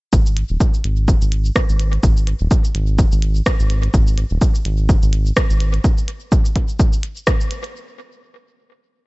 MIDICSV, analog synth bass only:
0, 0, Header, 1, 2, 480
1, 0, Start_track
1, 0, Tempo, 476190
1, 130, Time_signature, 4, 2, 24, 8
1, 9138, End_track
2, 0, Start_track
2, 0, Title_t, "Analog synth bass"
2, 0, Program_c, 0, 38
2, 129, Note_on_c, 0, 32, 93
2, 441, Note_off_c, 0, 32, 0
2, 505, Note_on_c, 0, 27, 93
2, 579, Note_off_c, 0, 27, 0
2, 850, Note_on_c, 0, 32, 83
2, 1161, Note_off_c, 0, 32, 0
2, 1225, Note_on_c, 0, 32, 88
2, 1520, Note_off_c, 0, 32, 0
2, 1706, Note_on_c, 0, 32, 81
2, 2000, Note_off_c, 0, 32, 0
2, 2050, Note_on_c, 0, 32, 91
2, 2361, Note_off_c, 0, 32, 0
2, 2426, Note_on_c, 0, 27, 93
2, 2499, Note_off_c, 0, 27, 0
2, 2770, Note_on_c, 0, 32, 84
2, 3081, Note_off_c, 0, 32, 0
2, 3146, Note_on_c, 0, 32, 92
2, 3441, Note_off_c, 0, 32, 0
2, 3626, Note_on_c, 0, 32, 81
2, 3920, Note_off_c, 0, 32, 0
2, 3970, Note_on_c, 0, 32, 92
2, 4281, Note_off_c, 0, 32, 0
2, 4345, Note_on_c, 0, 27, 95
2, 4419, Note_off_c, 0, 27, 0
2, 4689, Note_on_c, 0, 32, 85
2, 5001, Note_off_c, 0, 32, 0
2, 5065, Note_on_c, 0, 32, 89
2, 5360, Note_off_c, 0, 32, 0
2, 5545, Note_on_c, 0, 32, 81
2, 5840, Note_off_c, 0, 32, 0
2, 9138, End_track
0, 0, End_of_file